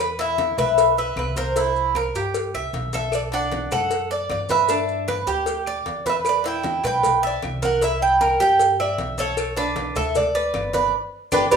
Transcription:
Already playing: E2
0.00 B4, claves
0.19 E4 E5, cowbell, high conga, maracas
0.38 cowbell, high conga, maracas
0.58 B1 B4 E5, cowbell, high conga, low conga, claves, maracas
0.77 cowbell, high conga, maracas
0.97 B4 E5, high conga, maracas
1.16 C2 B4, cowbell, high conga, claves, maracas
1.36 A#4 C5, cowbell, high conga, maracas
1.56 E4, cowbell, high conga, maracas
1.76 high conga, maracas
1.95 A#4, cowbell, high conga, claves, maracas
2.15 G2 G4, cowbell, high conga, maracas
2.34 cowbell, high conga, maracas
2.54 C2 E5, high conga, claves, maracas
2.73 B1, cowbell, high conga, maracas
2.93 A4 E5, cowbell, high conga, maracas
3.12 D5, cowbell, claves, maracas
3.32 D4 F#5, cowbell, high conga, maracas
3.52 cowbell, high conga, maracas
3.71 F#2 A4 F#5, cowbell, high conga, low conga, claves, maracas
3.91 cowbell, high conga, maracas
4.11 D5, high conga, maracas
4.30 G2 D5, cowbell, high conga, claves, maracas
4.49 B4 E5, cowbell, high conga, maracas
4.69 D4, cowbell, high conga, maracas
4.89 high conga, maracas
5.08 B4, cowbell, high conga, claves, maracas
5.26 D2 G4, cowbell, high conga, maracas
5.46 cowbell, high conga, maracas
5.66 D5, high conga, claves, maracas
5.86 E2, cowbell, high conga, maracas
6.06 B4 E5, cowbell, high conga, maracas
6.25 cowbell, high conga, claves, maracas
6.29 D5
6.44 E4 G5, cowbell, high conga, maracas
6.64 cowbell, high conga, maracas
6.84 B1 B4 G5, cowbell, high conga, low conga, claves, maracas
7.03 cowbell, high conga, low conga, maracas
7.23 D5 E5, high conga, maracas
7.42 C2, cowbell, high conga, claves, maracas
7.62 A#4 F#5, cowbell, high conga, maracas
7.81 E4 E5, cowbell, maracas
8.02 G5, high conga, maracas
8.21 A#4, cowbell, high conga, claves, maracas
8.40 G2 G4 G5, cowbell, high conga, maracas
8.59 cowbell, high conga, maracas
8.79 D5 E5, high conga, claves, maracas
8.98 B1, cowbell, high conga, maracas
9.18 A4 C#5, cowbell, high conga, maracas
9.37 cowbell, high conga, claves, maracas
9.56 D4 B4, cowbell, high conga, maracas
9.76 cowbell, high conga, maracas
9.96 D2 A4 E5, cowbell, high conga, low conga, claves, maracas
10.15 D5, cowbell, high conga, low conga, maracas
10.35 B4 D5, high conga, maracas
10.54 G1, cowbell, high conga, claves, maracas
10.73 B4 D5, cowbell, high conga, maracas
11.32 G1 D4 G4 B4 D5 G5, cowbell, high conga, claves, maracas
11.51 G1 D4 G4 B4 D5 G5, cowbell, high conga, claves, maracas

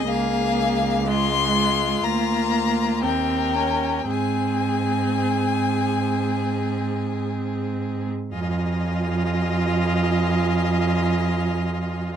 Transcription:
0.06 C#2 A#3 G#4 F5
1.06 G#3 F4 C6
1.56 F4
2.04 D2 A#3 A#5
3.02 D#2 C4 A#4 G5
3.55 C#4
4.08 G#2 C4 G#4 G#5
8.34 F2 F4 D#5 G#5

